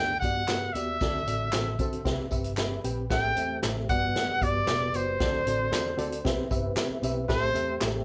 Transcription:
Already playing: picked electric bass D2, reed electric piano G2 B3 D4 G4 D5, trumpet G5
0.20 picked electric bass G2, reed electric piano B3 F#4, trumpet F#5, kick, closed hi-hat, tambourine
0.24 reed electric piano G4 D5
0.48 reed electric piano B3 F#4 G4 B4, snare, clap, closed hi-hat, tambourine
0.73 picked electric bass D#2, reed electric piano B3 F#4 G4 D5, trumpet E5, closed hi-hat, tambourine
1.01 picked electric bass D2, reed electric piano D3 C4 F#4 A4 D5, kick, snare, closed hi-hat, tambourine
1.26 picked electric bass A1, reed electric piano C4 F#4 A4 D5, closed hi-hat, tambourine
1.52 picked electric bass A1, reed electric piano C4 F#4 A4 C5, snare, clap, closed hi-hat, tambourine
1.79 picked electric bass D3, reed electric piano C4 F#4 A4 C5, kick, closed hi-hat, tambourine
1.93 closed hi-hat
2.05 picked electric bass C2, reed electric piano C3 C4 G4 B4 E5, kick, snare, closed hi-hat, tambourine
2.18 muted picked electric bass stroke
2.31 picked electric bass G1, reed electric piano C4 G4 B4 E5, kick, closed hi-hat, tambourine
2.44 closed hi-hat
2.57 reed electric piano C4 G4 B4 E5 B5, snare, clap, closed hi-hat, tambourine
2.84 picked electric bass A#1, reed electric piano C4 G4 B4 G5, closed hi-hat, tambourine
3.10 picked electric bass A1, reed electric piano A2 C4 G4 A4 E5, tonewheel organ A3 C4 G4, trumpet G5, kick, snare, closed hi-hat, tambourine
3.37 picked electric bass E2, reed electric piano C4 G4 A4 E5, closed hi-hat, tambourine
3.63 picked electric bass A1, reed electric piano C4 G4 A4 E5, snare, clap, closed hi-hat, tambourine
3.89 picked electric bass G1, reed electric piano G2 B3 F#4 G4 D5, tonewheel organ G3 B3, trumpet F#5, kick, closed hi-hat, tambourine
4.16 snare, closed hi-hat
4.28 muted picked electric bass stroke
4.42 picked electric bass G1, reed electric piano B3 F#4 G4 D5, trumpet D5, kick, closed hi-hat, tambourine
4.67 picked electric bass E1, reed electric piano B3 F#4 G4 D5, snare, clap, closed hi-hat, tambourine
4.93 picked electric bass F#1, reed electric piano B3 F#4 G4 D5, trumpet C5, closed hi-hat, tambourine
5.20 picked electric bass D2, reed electric piano D3 C4 F#4 A4 D5, tonewheel organ C4 D4, kick, snare, closed hi-hat, tambourine
5.45 picked electric bass A1, reed electric piano C4 F#4 A4 D5, closed hi-hat, tambourine
5.71 picked electric bass E2, reed electric piano C4 F#4 A4 D5, snare, clap, closed hi-hat, tambourine
5.98 picked electric bass D2, reed electric piano C4 F#4 A4 D5, closed hi-hat, tambourine
6.12 closed hi-hat
6.25 picked electric bass C2, reed electric piano C3 C4 G4 B4 E5, tonewheel organ B3 E4, kick, snare, closed hi-hat, tambourine
6.37 muted picked electric bass stroke
6.50 picked electric bass G1, reed electric piano C4 G4 B4 E5, kick, closed hi-hat, tambourine
6.76 reed electric piano C4 G4 B4 E5, snare, clap, closed hi-hat, tambourine
6.90 muted picked electric bass stroke
7.02 picked electric bass B1, reed electric piano C4 G4 B4 E5, closed hi-hat, tambourine
7.28 picked electric bass A1, reed electric piano A2 C4 G4 A4 E5, tonewheel organ A3 G4, trumpet C5, kick, snare, closed hi-hat, tambourine
7.54 picked electric bass E2, reed electric piano C4 G4 A4 E5, closed hi-hat, tambourine
7.81 picked electric bass A1, reed electric piano C4 G4 A4 E5, snare, clap, closed hi-hat, tambourine

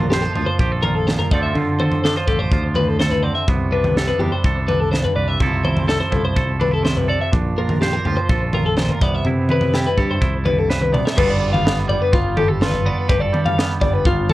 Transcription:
Already playing: picked electric bass A#1, clean electric guitar A#2 F3 D4 F4 A4
0.10 clean electric guitar G4 C5, snare
0.21 clean electric guitar A4
0.33 picked electric bass D2, clean electric guitar F3 F4, floor tom
0.46 clean electric guitar C5
0.59 picked electric bass A#1, clean electric guitar G4, kick
0.72 clean electric guitar A4
0.83 clean electric guitar F4 A#4, floor tom, mid tom
0.95 clean electric guitar A4
1.07 clean electric guitar A#2 C5, snare, mid tom
1.19 clean electric guitar A#4, floor tom
1.31 picked electric bass D2, clean electric guitar D3 F3 C4 F4 A4 D5, kick
1.43 clean electric guitar E5
1.55 picked electric bass D3, clean electric guitar F4, floor tom
1.79 clean electric guitar A4 C5, mid tom
1.91 floor tom, mid tom
2.04 clean electric guitar F3 D4 A4, snare
2.16 clean electric guitar F4 C5
2.27 picked electric bass A1, clean electric guitar G4 A4, kick, floor tom
2.39 clean electric guitar C5
2.51 picked electric bass D2, clean electric guitar F4, kick
2.75 clean electric guitar A2 B4, floor tom, mid tom
2.88 clean electric guitar A4
2.99 clean electric guitar A4 C5, snare, mid tom
3.11 clean electric guitar B4, floor tom
3.23 clean electric guitar D3 C4 D5
3.35 clean electric guitar E5
3.48 picked electric bass C2, clean electric guitar C3 B3, kick, floor tom
3.71 picked electric bass C2, clean electric guitar D4 B4
3.84 floor tom, mid tom
3.96 clean electric guitar G4 A4, snare
4.07 clean electric guitar B4
4.19 picked electric bass E2, clean electric guitar G3 D4 G4, floor tom
4.32 clean electric guitar C5
4.44 picked electric bass C2, clean electric guitar A4, kick
4.68 clean electric guitar D4 B4, floor tom, mid tom
4.80 clean electric guitar A4
4.92 clean electric guitar G2 C5, snare, mid tom
5.04 clean electric guitar B4, floor tom
5.16 picked electric bass C2, clean electric guitar B4 D5
5.28 clean electric guitar E5
5.40 picked electric bass C2, clean electric guitar C3 F3 C4 E4 A4, kick, floor tom
5.64 clean electric guitar E4 C5, mid tom
5.77 floor tom, mid tom
5.88 clean electric guitar A4, snare
6.00 clean electric guitar C5
6.11 picked electric bass C2, clean electric guitar F3 E4 A4, kick, floor tom
6.25 clean electric guitar C5
6.36 picked electric bass C2, clean electric guitar A4, kick
6.59 clean electric guitar D4 B4, floor tom, mid tom
6.71 clean electric guitar E4 A4
6.83 clean electric guitar C3 C5, snare, mid tom
6.97 clean electric guitar B4, floor tom
7.08 clean electric guitar A4 D5
7.21 clean electric guitar E5
7.32 picked electric bass A#1, clean electric guitar A#2 D4, kick, floor tom
7.58 picked electric bass A#1, clean electric guitar F4 A#4
7.69 floor tom, mid tom
7.81 clean electric guitar G4 C5, snare
7.93 clean electric guitar A#4
8.05 picked electric bass D2, clean electric guitar F3 F4 G4, floor tom
8.17 clean electric guitar C5
8.29 picked electric bass A#1, clean electric guitar A4, kick
8.53 clean electric guitar F4 A#4, floor tom, mid tom
8.66 clean electric guitar A4
8.77 clean electric guitar A#2 C5, snare, mid tom
8.89 clean electric guitar A#4, floor tom
9.01 picked electric bass C2, clean electric guitar C3 B3 D5, kick
9.14 clean electric guitar E5
9.24 picked electric bass C3, clean electric guitar E4, floor tom
9.49 clean electric guitar B4, mid tom
9.61 floor tom, mid tom
9.73 clean electric guitar G3 E4 G4, snare
9.86 clean electric guitar B4
9.97 picked electric bass G2, clean electric guitar G4 A4, kick, floor tom
10.11 clean electric guitar C5
10.21 picked electric bass C2, clean electric guitar E4, kick
10.45 clean electric guitar G2 B4, floor tom, mid tom
10.59 clean electric guitar A4
10.70 clean electric guitar B4 C5, snare
10.82 clean electric guitar B4, mid tom
10.92 clean electric guitar C3 B3 D5, mid tom
11.05 clean electric guitar E5, snare
11.16 picked electric bass G1, clean electric guitar G2 G3 B3 F4 A4 B4, kick, floor tom, crash
11.30 clean electric guitar D5
11.40 clean electric guitar G3
11.53 clean electric guitar F5, floor tom, mid tom
11.65 clean electric guitar B3, snare
11.88 clean electric guitar G3 D5, floor tom
12.02 clean electric guitar B4
12.13 picked electric bass G1, clean electric guitar F4, kick
12.37 clean electric guitar G4 A4, floor tom, mid tom
12.48 clean electric guitar G4 A4
12.61 clean electric guitar F4 B4, snare, mid tom
12.74 floor tom
12.86 clean electric guitar B3 D5
12.98 clean electric guitar B4
13.08 picked electric bass G1, clean electric guitar G2 G4 B4, kick, floor tom
13.20 clean electric guitar A4 D5
13.33 clean electric guitar G3, mid tom
13.46 clean electric guitar F5, floor tom, mid tom
13.58 clean electric guitar B3, snare
13.81 picked electric bass G1, clean electric guitar G3 D5, kick, floor tom
13.93 clean electric guitar B4
14.05 picked electric bass G1, clean electric guitar F4, kick
14.29 clean electric guitar A4, floor tom, mid tom

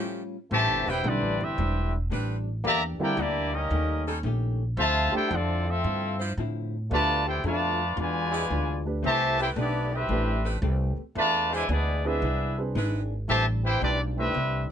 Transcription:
Already playing: saxophone section F3 C#4 G4
0.00 hollow-body jazz guitar A2 G3 C#4 F4, saxophone section A3
0.51 upright bass A1, hollow-body jazz guitar A2 G3 C4 D4, trombone section C3 E3 A3, trumpet section G4 C5 E5 A5
0.69 upright bass G1
0.87 upright bass E1, saxophone section G3 C4 D4 B4, trombone section C4 E4 G4, trumpet section E4 B4 C5 G5
1.04 upright bass B1, hollow-body jazz guitar A2 G3 C4 D4, grand piano D3 G3 C4 E4, trombone section E3 G3 D4, trumpet section C4 G4 B4 D5
1.22 upright bass A1
1.40 upright bass G1, trombone section G3 C4 E4, trumpet section C4 G4 B4 E5
1.58 upright bass E1, hollow-body jazz guitar A2 G3 C4 D4
2.10 upright bass A1, hollow-body jazz guitar A2 G3 C4 D4, saxophone section G3 C4 D4 B4
2.64 upright bass E2, trombone section D3 G3 A#3, hollow-body jazz guitar E3 A#3 D4 G4, trumpet section G4 D5 E5 A#5
2.99 grand piano D3 G3 C4 E4, trombone section A#3 D4 G4, trumpet section E4 A#4 D5 G5, muted upright bass stroke
3.17 upright bass D2, hollow-body jazz guitar E3 A#3 D4 G4, trombone section G3 A#3 D4, trumpet section A#3 E4 G4 D5
3.52 trombone section G3 A#3 D#4, trumpet section C#4 G4 A#4 D#5
3.71 upright bass D#2, hollow-body jazz guitar D#3 A3 C#4 G4
4.06 saxophone section G3 C#4 D#4 A4
4.23 upright bass A#1, hollow-body jazz guitar D#3 A3 C#4 G4
4.77 upright bass D2, trombone section C3 F3 A3, hollow-body jazz guitar D3 F3 C4 E4, trumpet section F4 C5 E5 A5
5.12 grand piano A3 D4 G4 C5, trumpet section E4 A4 C5 G5, trombone section G4, muted upright bass stroke
5.30 upright bass F2, hollow-body jazz guitar D3 F3 C4 E4, trombone section F3 A3 D4, trumpet section C4 F4 A4 D5
5.66 trombone section A3 C4 F4, trumpet section C4 F4 A4 E5
5.84 upright bass G2, hollow-body jazz guitar D3 F3 C4 E4
6.19 saxophone section F3 D4 E4 C5
6.37 upright bass A2, hollow-body jazz guitar D3 F3 C4 E4
6.91 upright bass D2, hollow-body jazz guitar B2 A3 D4 F4, trombone section D3 F3 A3, grand piano A3 D4 G4 B4, trumpet section F4 B4 D5 A5
7.26 trumpet section E4 A4 C5 G5, trombone section G4
7.44 upright bass F2, hollow-body jazz guitar B2 A3 D4 F4, trombone section D3 F3 A3, trumpet section F4 B4 D5 A5
7.96 upright bass E2, trombone section B2 D3 G#3, hollow-body jazz guitar E3 G#3 D4 F4, trumpet section F4 B4 D5 G#5
8.32 saxophone section F3 D4 E4 G#4
8.50 upright bass D2, hollow-body jazz guitar E3 G#3 D4 F4
8.85 grand piano A3 D4 G4 B4
9.03 upright bass C2, trombone section C3 E3 A3, hollow-body jazz guitar A3 C4 G4 B4, trumpet section G4 C5 E5 A5
9.37 saxophone section A3 C4 G4 B4, trombone section C4 E4 G4, trumpet section E4 B4 C5 G5
9.56 upright bass B1, hollow-body jazz guitar A3 C4 G4 B4, trumpet section B3 E4 G4 D5, trombone section D4
9.92 trombone section G3 C4 E4, trumpet section C4 G4 B4 E5
10.09 upright bass A1, hollow-body jazz guitar A3 C4 G4 B4, grand piano A3 D4 G4 B4
10.44 saxophone section A3 C4 G4 B4
10.62 upright bass C2, hollow-body jazz guitar A3 C4 G4 B4
10.97 muted upright bass stroke
11.15 upright bass E2, hollow-body jazz guitar E3 C4 D4 G#4, trombone section A3, trumpet section F4 B4 D5 A5
11.51 trombone section B2 D3 G#3, saxophone section G#3 D4 E4 C5, trumpet section E4 B4 D5 G#5
11.68 upright bass D2, hollow-body jazz guitar E3 C4 D4 G#4, trombone section G#3 B3 D4, trumpet section B3 E4 G#4 D5
12.04 trombone section G#3 B3 E4, grand piano C4 D4 G#4 B4, trumpet section D4 G#4 B4 E5
12.22 upright bass C2, hollow-body jazz guitar E3 C4 D4 G#4
12.58 grand piano C4 D4 G#4 B4
12.75 upright bass G#1, hollow-body jazz guitar E3 C4 D4 G#4, saxophone section G#3 D4 E4 B4
13.28 upright bass A1, hollow-body jazz guitar A2 G3 C4 D4, trombone section C3 E3 A3, trumpet section G4 C5 E5 A5
13.64 trombone section C4 E4 G4, trumpet section E4 B4 C5 G5
13.81 upright bass B1, hollow-body jazz guitar A2 G3 C4 D4, trombone section E3 G3 D4, trumpet section C4 G4 B4 D5
14.17 trombone section G3 C4 E4, grand piano A3 D4 G4 B4, trumpet section C4 G4 B4 E5
14.34 upright bass C2, hollow-body jazz guitar A2 G3 C4 D4

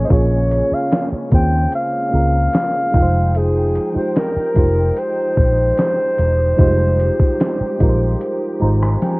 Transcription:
Already playing: string section C#3 G#3 A#3 C#4, fm electric piano A#3 C#4 F4 G#4 C5
0.04 alto saxophone C5 D#5
0.08 fingered electric bass A#1, fm electric piano A#3 C#4 F4 G#4, kick, closed hi-hat
0.12 fm electric piano C#5, alto saxophone C#5
0.51 closed hi-hat
0.72 alto saxophone F5, muted fingered electric bass stroke
0.92 snare, closed hi-hat
1.12 muted fingered electric bass stroke
1.30 fingered electric bass D#2, fm electric piano A#3 C4 F4 G#4, kick, closed hi-hat
1.34 fm electric piano C#4 C5, alto saxophone G5
1.72 alto saxophone F5, closed hi-hat
2.11 fingered electric bass C#2, fm electric piano A#3 C#4 F4 G#4
2.15 fm electric piano A#4
2.53 snare, closed hi-hat
2.92 fingered electric bass F1, string section F3 D#4 G5, fm electric piano G#3 D#4 F4 G5, kick, closed hi-hat
2.96 fm electric piano A#4
3.02 fm electric piano C5
3.35 alto saxophone G#4, closed hi-hat
3.75 closed hi-hat
3.93 fm electric piano G#3 D#4 F4 G4, muted fingered electric bass stroke
3.97 fm electric piano C5, alto saxophone C5
4.16 alto saxophone A#4, snare, closed hi-hat
4.36 muted fingered electric bass stroke
4.54 fingered electric bass F1, fm electric piano G#3 D#4 F4 G4, kick, closed hi-hat
4.58 fm electric piano C5
4.97 alto saxophone C5, closed hi-hat
5.37 fingered electric bass A#1, kick
5.77 snare, closed hi-hat
6.18 fingered electric bass E1, string section G4, closed hi-hat
6.57 fingered electric bass F1, fm electric piano G3 D#4 F4 G4, kick, closed hi-hat
6.61 fm electric piano G#3 C5
7.00 closed hi-hat
7.20 muted fingered electric bass stroke, kick
7.40 snare, closed hi-hat
7.61 muted fingered electric bass stroke
7.79 fingered electric bass A#1, fm electric piano G#3 D#4 F4 G4, kick, closed hi-hat
7.83 fm electric piano A#4
7.89 fm electric piano C5
8.21 closed hi-hat
8.60 fingered electric bass G#1, fm electric piano G#3 D#4 F4 G4 A#5
8.64 fm electric piano C5
8.82 fm electric piano G#5, cross-stick
9.02 fm electric piano G5, closed hi-hat, high tom

